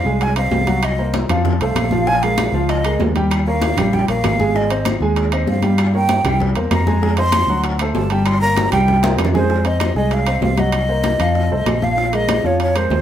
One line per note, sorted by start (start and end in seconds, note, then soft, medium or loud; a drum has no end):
0.00 0.24 F5 medium
0.05 0.48 C2 medium
0.05 0.31 G#3 medium
0.05 0.31 G#4 medium
0.05 0.31 G#5 medium
0.05 high conga soft
0.21 0.37 G#5 medium
0.21 high bongo medium
0.21 high conga soft
0.21 high timbale medium
0.36 0.62 C4 medium
0.36 0.62 C5 medium
0.36 0.62 D#5 medium
0.36 0.86 F5 medium
0.36 high bongo soft
0.36 high conga soft
0.36 high timbale medium
0.36 claves medium
0.51 1.23 C2 medium
0.51 high bongo soft
0.51 low bongo medium
0.51 high conga medium
0.51 low timbale medium
0.67 0.93 F#3 medium
0.67 0.93 F#4 medium
0.67 0.93 F#5 medium
0.67 high bongo soft
0.67 high conga medium
0.67 high timbale medium
0.83 1.15 D#5 medium
0.83 high bongo medium
0.83 high conga soft
0.83 high timbale medium
0.83 claves medium
0.98 1.24 A#3 medium
0.98 1.24 A#4 medium
0.98 1.24 C5 medium
0.98 high bongo soft
0.98 high conga soft
1.14 high bongo medium
1.14 high conga medium
1.14 high timbale medium
1.29 1.58 F2 medium
1.29 1.55 F3 medium
1.29 1.55 F4 medium
1.29 1.55 F5 medium
1.29 high conga soft
1.29 low conga medium
1.29 high timbale medium
1.29 claves medium
1.45 high bongo medium
1.45 high conga soft
1.45 low conga medium
1.60 1.75 C2 medium
1.60 1.86 A3 medium
1.60 1.87 A4 medium
1.60 1.87 C5 medium
1.60 2.09 F5 medium
1.60 high bongo soft
1.60 high conga soft
1.60 high timbale medium
1.75 2.48 A#1 medium
1.75 high bongo soft
1.75 low bongo medium
1.75 high conga medium
1.75 high timbale loud
1.75 claves medium
1.91 2.05 F3 medium
1.91 2.05 F4 medium
1.91 2.05 F5 medium
1.91 high bongo soft
1.91 high conga medium
2.07 2.20 F3 medium
2.07 2.20 F4 medium
2.07 2.20 F5 medium
2.07 2.24 G#5 loud
2.07 high bongo medium
2.07 high conga soft
2.22 2.48 G#3 medium
2.22 2.49 G#4 medium
2.22 2.49 A#4 medium
2.22 2.71 F5 medium
2.22 high bongo soft
2.22 high conga soft
2.22 high timbale medium
2.38 high bongo medium
2.38 high conga medium
2.38 high timbale medium
2.38 claves medium
2.53 2.96 C#2 medium
2.53 2.79 F3 medium
2.53 2.79 F4 loud
2.53 2.80 F5 medium
2.53 high conga soft
2.69 3.00 D#5 medium
2.69 high bongo medium
2.69 high conga soft
2.69 high timbale medium
2.84 3.11 G#3 medium
2.84 3.11 G#4 medium
2.84 3.11 A#4 medium
2.84 high bongo soft
2.84 high conga soft
2.84 high timbale medium
2.84 claves medium
2.99 3.72 D#2 medium
2.99 high bongo soft
2.99 low bongo medium
2.99 high conga medium
2.99 low timbale medium
3.15 3.41 G3 medium
3.15 3.42 G4 medium
3.15 3.42 G5 medium
3.15 high bongo soft
3.15 high conga medium
3.15 high timbale medium
3.31 high bongo medium
3.31 high conga soft
3.31 high timbale medium
3.31 claves medium
3.47 3.72 A#3 medium
3.47 3.73 A#4 medium
3.47 3.73 C#5 medium
3.47 3.95 F5 medium
3.47 high bongo soft
3.47 high conga soft
3.62 high bongo medium
3.62 high conga medium
3.62 high timbale medium
3.77 4.06 A#1 medium
3.77 4.03 G3 medium
3.77 4.03 G4 medium
3.77 4.03 G5 medium
3.77 high conga soft
3.77 low conga medium
3.77 high timbale medium
3.77 claves medium
3.93 4.08 G5 medium
3.93 high bongo medium
3.93 high conga soft
3.93 low conga medium
4.08 4.23 A#1 medium
4.08 4.34 A#3 medium
4.08 4.34 A#4 medium
4.08 4.34 C#5 medium
4.08 4.57 F5 medium
4.08 high bongo soft
4.08 high conga soft
4.08 high timbale medium
4.23 4.96 G#1 medium
4.23 high bongo soft
4.23 low bongo medium
4.23 high conga medium
4.23 high timbale medium
4.23 low timbale medium
4.23 claves medium
4.39 4.52 G#3 medium
4.39 4.53 G#4 medium
4.39 4.53 G#5 medium
4.39 high bongo soft
4.39 high conga medium
4.54 4.67 G#3 medium
4.54 4.68 G#4 medium
4.54 4.86 D#5 medium
4.54 4.68 G#5 medium
4.54 high bongo medium
4.54 high conga soft
4.70 4.96 C4 medium
4.70 4.96 C5 medium
4.70 4.96 D#5 medium
4.70 high bongo soft
4.70 high conga soft
4.70 high timbale medium
4.85 high bongo medium
4.85 high conga medium
4.85 high timbale medium
4.85 claves medium
5.01 5.44 D#2 medium
5.01 5.27 G#3 medium
5.01 5.27 G#4 medium
5.01 5.27 G#5 medium
5.01 high conga soft
5.16 high bongo medium
5.16 high conga soft
5.16 high timbale medium
5.32 5.58 C4 medium
5.32 5.58 C5 medium
5.32 5.58 D#5 medium
5.32 high bongo soft
5.32 high conga soft
5.32 high timbale medium
5.32 claves medium
5.47 6.19 G2 medium
5.47 5.92 F5 medium
5.47 high bongo soft
5.47 low bongo medium
5.47 high conga medium
5.62 5.89 G3 medium
5.62 5.89 G4 medium
5.62 5.89 G5 medium
5.62 high bongo soft
5.62 high conga medium
5.62 high timbale medium
5.78 high bongo medium
5.78 high conga soft
5.78 high timbale medium
5.78 claves medium
5.94 6.19 A#3 medium
5.94 6.20 A#4 medium
5.94 6.20 C#5 medium
5.94 6.38 G5 medium
5.94 high bongo soft
5.94 high conga soft
6.09 high bongo medium
6.09 high conga medium
6.09 high timbale medium
6.24 6.53 C2 medium
6.24 6.51 G3 medium
6.24 6.51 G4 medium
6.24 6.51 G5 medium
6.24 high conga soft
6.24 low conga medium
6.24 high timbale medium
6.24 claves medium
6.40 high bongo medium
6.40 high conga soft
6.40 low conga medium
6.55 6.70 E2 medium
6.55 6.81 A#3 medium
6.55 6.81 A#4 medium
6.55 6.82 C5 medium
6.55 high bongo soft
6.55 high conga soft
6.55 high timbale medium
6.71 7.43 F2 medium
6.71 7.15 A#5 medium
6.71 high bongo soft
6.71 low bongo medium
6.71 high conga medium
6.71 high timbale medium
6.71 low timbale medium
6.71 claves medium
6.87 7.00 G#3 medium
6.87 7.00 G#4 medium
6.87 7.00 G#5 medium
6.87 high bongo soft
6.87 high conga medium
7.02 7.15 G#3 medium
7.02 7.15 G#4 medium
7.02 7.15 G#5 medium
7.02 high bongo medium
7.02 high conga soft
7.17 7.43 C4 medium
7.17 7.44 C5 medium
7.17 7.44 D#5 medium
7.17 7.61 C6 loud
7.17 high bongo soft
7.17 high conga soft
7.17 high timbale medium
7.32 high bongo medium
7.32 high conga medium
7.32 high timbale loud
7.32 claves medium
7.47 7.91 D2 loud
7.47 7.74 F#3 medium
7.47 7.74 F#4 medium
7.47 7.75 F#5 medium
7.47 high conga soft
7.64 high bongo medium
7.64 high conga soft
7.64 high timbale medium
7.79 8.06 A3 medium
7.79 8.06 A4 medium
7.79 8.06 C5 medium
7.79 high bongo soft
7.79 high conga soft
7.79 high timbale medium
7.79 claves medium
7.94 8.66 G1 medium
7.94 8.28 A5 medium
7.94 high bongo soft
7.94 low bongo medium
7.94 high conga medium
7.94 low timbale medium
8.10 8.36 G3 medium
8.10 8.36 G4 medium
8.10 8.37 G5 medium
8.10 high bongo soft
8.10 high timbale medium
8.26 8.41 C6 medium
8.26 high bongo medium
8.26 high conga soft
8.26 high timbale medium
8.26 claves medium
8.41 8.67 A#3 medium
8.41 8.67 A#4 medium
8.41 8.68 C#5 medium
8.41 8.70 A#5 loud
8.41 high bongo soft
8.41 high conga soft
8.57 high bongo medium
8.57 high conga medium
8.57 high timbale medium
8.72 9.15 C2 medium
8.72 8.98 G3 loud
8.72 8.98 G4 medium
8.72 9.16 G5 medium
8.72 8.98 G5 loud
8.72 high conga soft
8.72 low conga medium
8.72 high timbale medium
8.72 claves medium
8.88 high bongo medium
8.88 high conga soft
8.88 low conga medium
9.03 9.29 A#3 medium
9.03 9.29 A#4 medium
9.03 9.29 C5 medium
9.03 high bongo loud
9.03 high conga loud
9.03 high timbale medium
9.17 9.90 F2 medium
9.17 high bongo medium
9.17 high timbale loud
9.17 low timbale medium
9.17 claves medium
9.25 low conga medium
9.34 9.47 G#3 medium
9.34 9.47 G#4 loud
9.34 9.68 C5 medium
9.34 9.47 G#5 medium
9.34 low bongo medium
9.34 low conga medium
9.50 9.63 G#3 medium
9.50 9.63 G#4 medium
9.50 9.63 G#5 medium
9.50 high bongo medium
9.50 high conga soft
9.65 9.90 C4 medium
9.65 9.90 C5 medium
9.65 9.91 D#5 medium
9.65 9.96 D#5 medium
9.65 high bongo soft
9.65 high conga soft
9.65 high timbale medium
9.80 high bongo medium
9.80 high conga medium
9.80 high timbale medium
9.80 low timbale medium
9.80 claves medium
9.95 10.39 C2 medium
9.95 10.22 G#3 medium
9.95 10.22 G#4 medium
9.95 10.15 D#5 medium
9.95 10.22 G#5 medium
9.95 high bongo soft
9.95 high conga soft
10.11 10.44 F5 medium
10.11 high bongo medium
10.11 high conga soft
10.11 high timbale medium
10.26 10.53 C4 medium
10.26 10.53 C5 medium
10.26 10.53 D#5 medium
10.26 high bongo soft
10.26 high conga soft
10.26 high timbale medium
10.26 claves medium
10.41 11.14 C2 medium
10.41 10.61 F5 medium
10.41 high bongo soft
10.41 low bongo medium
10.41 high conga medium
10.41 low timbale medium
10.57 10.83 F#3 medium
10.57 10.83 F#4 medium
10.57 11.85 D#5 medium
10.57 10.84 F#5 medium
10.57 high conga medium
10.57 high timbale medium
10.72 high bongo medium
10.72 high timbale medium
10.72 claves medium
10.89 11.14 A#3 medium
10.89 11.15 A#4 medium
10.89 11.15 C5 medium
10.89 high bongo soft
10.89 high conga soft
11.04 high bongo medium
11.04 high conga medium
11.04 high timbale medium
11.04 low timbale medium
11.19 11.49 F2 medium
11.19 11.46 F3 medium
11.19 11.46 F4 medium
11.19 11.46 F5 medium
11.19 high conga soft
11.19 high timbale medium
11.19 claves medium
11.35 high bongo medium
11.35 high conga soft
11.51 11.65 C2 medium
11.51 11.77 A3 medium
11.51 11.77 A4 medium
11.51 11.77 C5 medium
11.51 high bongo soft
11.51 high conga soft
11.66 12.39 A#1 medium
11.66 high bongo soft
11.66 low bongo medium
11.66 high conga medium
11.66 high timbale medium
11.66 low timbale medium
11.66 claves medium
11.82 11.95 F3 medium
11.82 11.95 F4 medium
11.82 11.95 F5 medium
11.82 12.16 F5 medium
11.82 high conga medium
11.97 12.10 F3 medium
11.97 12.11 F4 medium
11.97 12.11 F5 medium
11.97 high bongo medium
11.97 high conga soft
12.13 12.39 G#3 medium
12.13 12.39 G#4 medium
12.13 12.39 A#4 medium
12.13 12.47 D#5 loud
12.13 high bongo soft
12.13 high conga soft
12.13 high timbale medium
12.29 high bongo medium
12.29 high conga medium
12.29 high timbale medium
12.29 low timbale medium
12.29 claves medium
12.44 12.88 F2 medium
12.44 12.70 F3 medium
12.44 12.70 F4 medium
12.44 12.61 C#5 medium
12.44 12.70 F5 medium
12.44 high bongo soft
12.44 high conga soft
12.60 12.78 C#5 medium
12.60 high bongo medium
12.60 high conga soft
12.60 high timbale medium
12.75 13.01 G#3 medium
12.75 13.01 G#4 medium
12.75 13.02 A#4 medium
12.75 13.02 C5 medium
12.75 high bongo soft
12.75 high conga soft
12.75 high timbale medium
12.75 claves medium
12.90 13.02 D#2 medium
12.90 high bongo soft
12.90 low bongo medium
12.90 high conga medium
12.90 low timbale medium